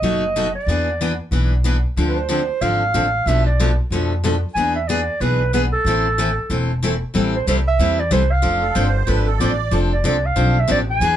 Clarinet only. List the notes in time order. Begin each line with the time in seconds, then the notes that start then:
Already playing: D#5
0.55 D5
2.09 B4
2.16 C5
2.62 F5
3.28 E5
3.46 D5
4.54 G#5
4.75 E5
4.88 D5
5.21 B4
5.54 B4
5.73 A4
7.36 C5
7.49 C5
7.68 E5
8.00 D5
8.13 C5
8.32 F5
9.93 D5
10.07 D5
10.26 F5
10.60 E5
10.71 D5
10.90 G#5